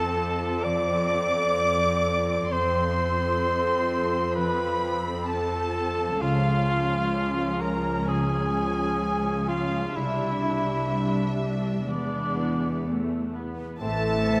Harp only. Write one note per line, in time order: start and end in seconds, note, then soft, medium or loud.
0.00 0.64 F3 soft
0.00 2.46 A3 soft
0.00 0.40 C4 soft
0.00 0.16 F4 soft
0.00 1.34 A4 soft
0.17 0.88 F4 soft
0.41 1.11 C4 soft
0.65 2.50 F3 soft
0.89 2.04 F4 soft
1.12 2.27 C4 soft
1.35 1.81 A4 soft
1.82 3.20 A4 soft
2.06 2.74 F4 soft
2.28 2.97 C4 soft
2.51 4.36 F3 soft
2.75 3.89 F4 soft
2.98 4.11 C4 soft
3.21 3.66 A4 soft
3.67 5.04 A4 soft
3.90 4.58 F4 soft
4.13 4.81 C4 soft
4.37 8.27 F3 soft
4.59 5.74 F4 soft
4.82 5.97 C4 soft
5.05 5.51 A4 soft
5.29 6.25 C5 soft
5.52 6.25 A4 soft
5.75 6.90 F4 soft
5.98 6.25 C4 soft
6.21 8.06 C#3 soft
6.45 7.83 G#3 soft
6.67 7.60 C#4 soft
6.91 7.36 F4 soft
7.14 9.00 G#4 soft
7.37 8.77 F4 soft
7.61 8.29 C#4 soft
7.84 8.53 G#3 soft
8.07 10.00 C#3 soft
8.31 9.48 C#4 soft
8.54 9.71 G#3 soft
8.78 9.24 F4 soft
9.02 10.00 G#4 soft
9.25 10.00 F4 soft
9.49 10.00 C#4 soft
9.72 10.00 G#3 soft
9.96 11.92 C3 soft
10.19 11.62 G3 soft
10.43 11.37 D4 soft
10.67 11.13 G4 soft
10.91 11.92 C5 soft
11.15 11.92 G4 soft
11.39 13.85 D4 soft
11.63 11.92 G3 soft
11.88 13.86 E3 soft
12.12 13.55 B3 soft
12.36 13.32 E4 soft
12.61 13.07 G#4 soft
12.85 13.85 B4 soft
13.09 13.85 G#4 soft
13.33 14.40 E4 soft
13.57 13.85 B3 soft
13.81 14.40 A2 soft
14.28 14.40 E3 soft